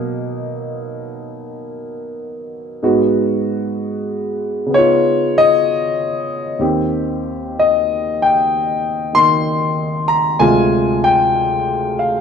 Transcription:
grand piano
Already playing: B2 F#3 A#3 D#4
2.83 G#2 G#3 B3 F#4
4.66 C#3 B3
4.73 D#4 C#5
4.78 F4
5.38 D#5
6.59 D#2 D#3 C4 G4
7.59 D#5
8.22 G5
9.13 D#3 A#3 D#4 C6
10.08 A#5
10.39 D2 C3 G#3 F4 G#5
11.04 G5
11.99 F5

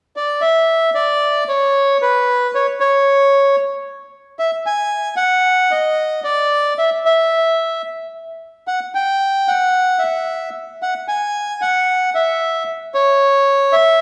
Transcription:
bandoneon
0.16 D5
0.41 E5
0.95 D5
1.49 C#5
2.02 B4
2.55 C#5
2.80 C#5
4.39 E5
4.66 G#5
5.17 F#5
5.71 D#5
6.24 D5
6.78 E5
7.05 E5
8.68 F#5
8.95 G5
9.48 F#5
9.99 E5
10.82 F#5
11.08 G#5
11.61 F#5
12.15 E5
12.94 C#5
13.73 E5

